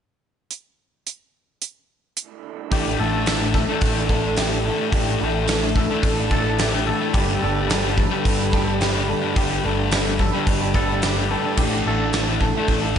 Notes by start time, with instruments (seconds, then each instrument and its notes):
0.51 closed hi-hat
1.07 closed hi-hat
1.62 closed hi-hat
2.17 closed hi-hat
2.71 picked electric bass A1, clean electric guitar A2 D3 A3 D4 E4 G4 A4, distorted electric guitar A2 E3, kick, open hi-hat
2.75 distorted electric guitar A3
2.86 distorted electric guitar E3 A3
2.99 picked electric bass A1, distorted electric guitar A2 E3, clean electric guitar A3 D4 E4 A4
3.04 distorted electric guitar A3
3.26 clean electric guitar A2 D3 A3 D4 E4 A4, distorted electric guitar A2 E3, snare, open hi-hat, tambourine
3.31 distorted electric guitar A3
3.40 distorted electric guitar E3 A3, clean electric guitar A3 D4 E4 A4
3.54 clean electric guitar A4, muted clean electric guitar stroke, muted distorted electric guitar stroke, kick, snare
3.69 distorted electric guitar E3 A3, clean electric guitar A3 D4 E4 A4
3.81 picked electric bass A1, kick, open hi-hat
3.96 clean electric guitar A3 D4 E4 A4
4.08 distorted electric guitar A2 E3 A3, clean electric guitar A3 D4 E4 A4, kick
4.13 clean electric guitar A4
4.23 clean electric guitar A3 D4 E4 A4
4.36 clean electric guitar A2 D3 A3 D4 E4 G4 A4, distorted electric guitar A2 E3 A3, snare, open hi-hat, tambourine
4.50 distorted electric guitar E3 A3, clean electric guitar A3 D4 E4 A4
4.64 distorted electric guitar A2 E3 A3, clean electric guitar A3 D4 E4 A4
4.79 distorted electric guitar E3 A3
4.91 picked electric bass A1, clean electric guitar A2 D3 A3 D4 E4 G4 A4, distorted electric guitar A2 E3, kick, open hi-hat
4.96 distorted electric guitar A3
5.08 distorted electric guitar E3 A3
5.19 picked electric bass A1, distorted electric guitar A2 E3, clean electric guitar A3 D4 E4 A4
5.24 distorted electric guitar A3
5.47 clean electric guitar A2 D3 A3 D4 E4 A4, distorted electric guitar A2 E3, snare, open hi-hat, tambourine
5.51 distorted electric guitar A3
5.61 distorted electric guitar A3, clean electric guitar A3 D4 E4 A4
5.65 distorted electric guitar E3
5.75 clean electric guitar A4, muted clean electric guitar stroke, muted distorted electric guitar stroke, kick
5.88 distorted electric guitar A3, clean electric guitar A3 D4 E4 A4
5.94 distorted electric guitar E3
6.03 picked electric bass A1, kick, open hi-hat
6.17 clean electric guitar A3 D4 E4 A4
6.31 distorted electric guitar A2 E3 A3, clean electric guitar A3 D4 E4 A4, kick
6.44 clean electric guitar A3 D4 E4 A4
6.59 clean electric guitar A2 D3 A3 D4 E4 G4 A4, distorted electric guitar A2 E3 A3, snare, open hi-hat, tambourine
6.73 distorted electric guitar E3 A3, clean electric guitar A3 D4 E4 A4
6.86 distorted electric guitar A2 E3 A3, clean electric guitar A3 D4 E4 A4
7.01 distorted electric guitar E3 A3
7.13 picked electric bass G1, distorted electric guitar G2 D3 G3, clean electric guitar G3 A3 D4 G4, kick, open hi-hat
7.17 clean electric guitar G4 B4
7.27 distorted electric guitar D3 G3
7.41 picked electric bass G1, distorted electric guitar G2 D3 G3, clean electric guitar A3 D4 G4 A4 B4
7.69 distorted electric guitar G2 D3 G3, clean electric guitar G3 A3 D4 G4 B4, snare, open hi-hat, tambourine
7.83 distorted electric guitar D3 G3, clean electric guitar G4 B4
7.87 clean electric guitar D4
7.97 clean electric guitar A4, muted distorted electric guitar stroke, muted clean electric guitar stroke, kick
8.10 distorted electric guitar D3 G3, clean electric guitar G4 B4
8.15 clean electric guitar D4
8.25 picked electric bass G1, kick, open hi-hat
8.38 clean electric guitar D4 G4 B4
8.53 distorted electric guitar G2 D3 G3, clean electric guitar A3 D4 G4 A4 B4, kick
8.67 clean electric guitar D4 G4 B4
8.80 distorted electric guitar G2 D3 G3, clean electric guitar G3 A3 D4 G4, snare, open hi-hat, tambourine
8.84 clean electric guitar B4
8.94 distorted electric guitar D3 G3, clean electric guitar D4 G4 B4
9.08 distorted electric guitar G2 D3 G3, clean electric guitar A3 D4 G4 A4 B4
9.22 distorted electric guitar D3 G3
9.35 picked electric bass G1, distorted electric guitar G2 D3 G3, clean electric guitar G3 A3 D4 G4, kick, open hi-hat
9.39 clean electric guitar B4
9.50 distorted electric guitar D3 G3
9.63 picked electric bass G1, distorted electric guitar G2 D3, clean electric guitar A3 D4 G4 A4 B4
9.68 distorted electric guitar G3
9.91 distorted electric guitar G2 D3, clean electric guitar G3 A3 D4 G4 B4, snare, open hi-hat, tambourine
9.95 distorted electric guitar G3
10.05 distorted electric guitar G3, clean electric guitar D4 G4 B4
10.10 distorted electric guitar D3
10.19 clean electric guitar A4, muted clean electric guitar stroke, muted distorted electric guitar stroke, kick
10.32 distorted electric guitar G3, clean electric guitar D4 G4 B4
10.36 distorted electric guitar D3
10.47 picked electric bass G1, kick, open hi-hat
10.60 clean electric guitar D4 G4 B4
10.74 distorted electric guitar G2 D3 G3, clean electric guitar A3 D4 G4 A4 B4, kick
10.89 clean electric guitar D4 G4 B4
11.02 distorted electric guitar G2 D3, clean electric guitar G3 A3 D4 G4 B4, snare, open hi-hat, tambourine
11.06 distorted electric guitar G3
11.16 distorted electric guitar D3 G3, clean electric guitar D4 G4 B4
11.29 distorted electric guitar G2 D3 G3, clean electric guitar A3 D4 G4 A4 B4
11.44 distorted electric guitar D3 G3
11.57 picked electric bass A1, clean electric guitar A2 D3 A3 D4 E4 G4 A4, distorted electric guitar A2, kick, crash
11.61 distorted electric guitar E3 A3
11.72 distorted electric guitar E3 A3
11.85 picked electric bass A1, distorted electric guitar A2 E3, clean electric guitar A3 D4 E4 A4
11.89 distorted electric guitar A3
12.13 clean electric guitar A2 D3 A3 D4 E4 A4, distorted electric guitar A2 E3, snare, open hi-hat, tambourine
12.17 distorted electric guitar A3
12.27 distorted electric guitar E3 A3, clean electric guitar A3 D4 E4 A4
12.41 clean electric guitar A4, muted clean electric guitar stroke, muted distorted electric guitar stroke, kick
12.55 distorted electric guitar A3, clean electric guitar A3 D4 E4 A4
12.60 distorted electric guitar E3
12.68 picked electric bass A1, kick, open hi-hat
12.83 clean electric guitar A3 D4 E4 A4